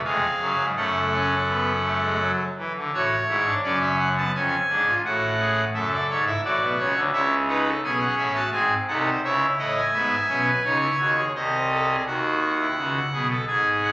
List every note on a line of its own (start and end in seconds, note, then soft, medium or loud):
0.04 0.26 F1 medium
0.04 0.26 F2 medium
0.04 0.26 G#3 medium
0.04 0.66 G#4 medium
0.04 0.66 F5 medium
0.40 0.56 F#1 medium
0.40 0.56 F#2 medium
0.40 0.63 F#3 medium
0.58 0.74 G#1 medium
0.58 0.74 G#2 medium
0.76 2.31 F#1 medium
0.76 2.31 F#2 medium
0.76 0.99 A3 medium
0.76 2.32 A4 medium
0.76 2.31 F#5 medium
1.12 1.35 C#4 medium
1.49 1.71 B3 medium
1.85 2.00 A3 soft
2.02 2.18 G#3 soft
2.21 2.43 F#3 soft
2.58 2.73 E3 soft
2.76 2.91 D3 soft
2.93 3.15 A1 medium
2.93 3.15 A2 medium
2.93 3.15 F#4 medium
2.93 3.54 C#5 medium
3.28 3.50 G#1 medium
3.28 3.50 G#2 medium
3.28 3.44 E4 medium
3.46 3.61 D4 medium
3.63 4.24 F#1 medium
3.63 4.24 F#2 medium
3.63 4.09 C#4 medium
3.63 3.79 D5 medium
3.81 3.96 E5 medium
3.99 4.14 F#5 medium
4.17 4.32 B3 medium
4.17 4.32 A5 medium
4.35 4.56 F1 medium
4.35 4.56 F2 medium
4.35 4.56 C#4 medium
4.35 4.95 G#5 medium
4.69 4.91 G#1 medium
4.69 4.91 G#2 medium
4.69 4.84 D4 medium
4.87 5.02 F4 medium
5.05 5.65 A1 medium
5.05 5.64 A2 medium
5.05 5.26 F#4 medium
5.05 5.65 F#5 medium
5.40 5.61 G#4 medium
5.74 5.96 F#1 medium
5.74 5.96 F#2 medium
5.74 6.19 A4 medium
5.74 5.89 E5 medium
5.92 6.07 D5 medium
6.10 6.31 G#1 medium
6.10 6.31 G#2 medium
6.10 6.24 C#5 medium
6.27 6.41 E4 medium
6.27 6.41 E5 medium
6.44 6.59 A1 medium
6.44 6.59 A2 medium
6.44 7.04 F#4 medium
6.44 6.65 D5 medium
6.61 6.76 B1 medium
6.61 6.76 B2 medium
6.79 6.93 C#2 medium
6.79 6.93 C#3 medium
6.79 7.00 C#5 medium
6.96 7.11 D2 medium
6.96 7.11 D3 medium
7.13 7.73 C#2 medium
7.13 7.73 C#3 medium
7.13 7.35 E4 medium
7.13 7.35 C#5 medium
7.13 7.35 E5 medium
7.48 7.69 D#4 medium
7.48 7.63 B4 medium
7.48 7.69 F#5 medium
7.66 7.80 A4 medium
7.83 8.05 B1 medium
7.83 8.05 B2 medium
7.83 8.43 C#4 medium
7.83 8.28 G#4 medium
7.83 7.98 G#5 medium
8.00 8.15 F#5 medium
8.17 8.39 A1 medium
8.17 8.39 A2 medium
8.17 8.33 E5 medium
8.35 8.50 F#4 medium
8.35 8.50 A5 medium
8.52 8.74 G#1 medium
8.52 8.74 G#2 medium
8.52 8.74 C4 medium
8.52 8.74 G#4 medium
8.52 8.74 G#5 medium
8.88 9.10 C2 medium
8.88 9.10 C3 medium
8.88 9.10 D#4 medium
8.88 9.03 A4 medium
8.88 9.10 F#5 medium
9.05 9.20 C5 medium
9.24 9.46 C#2 medium
9.24 9.45 C#3 medium
9.24 9.84 E4 medium
9.24 9.46 C#5 medium
9.24 9.45 E5 medium
9.59 9.80 A1 medium
9.59 9.80 A2 medium
9.59 9.80 D#5 medium
9.59 9.74 F#5 medium
9.77 11.13 G#5 medium
9.94 10.15 G#1 medium
9.94 10.16 G#2 medium
9.94 10.15 B3 medium
9.94 10.39 E5 medium
10.29 10.51 B1 medium
10.29 10.51 B2 medium
10.29 10.51 C#4 medium
10.46 10.62 B4 medium
10.64 10.86 C#2 medium
10.64 10.86 C#3 medium
10.64 10.79 D#4 medium
10.64 11.25 C#5 medium
10.82 10.97 E4 medium
10.99 11.21 D#2 medium
10.99 11.22 D#3 medium
10.99 11.15 F#4 medium
11.17 11.32 G#4 medium
11.35 11.96 C2 medium
11.35 11.96 C3 medium
11.35 11.57 C5 medium
11.35 11.96 D#5 medium
11.70 11.86 A4 medium
11.88 12.04 G#4 medium
12.06 12.67 D#2 medium
12.06 12.67 D#3 medium
12.06 12.52 F#4 medium
12.06 13.28 F#5 medium
12.59 12.74 E4 medium
12.77 12.99 C#2 soft
12.77 12.99 C#3 soft
12.77 12.99 F#4 medium
13.12 13.34 B1 soft
13.12 13.34 B2 medium
13.12 13.27 G#4 medium
13.30 13.45 A4 medium
13.48 13.92 G#1 medium
13.48 13.92 G#2 medium
13.48 13.92 G#4 medium
13.48 13.69 G#5 medium
13.83 13.92 F#5 medium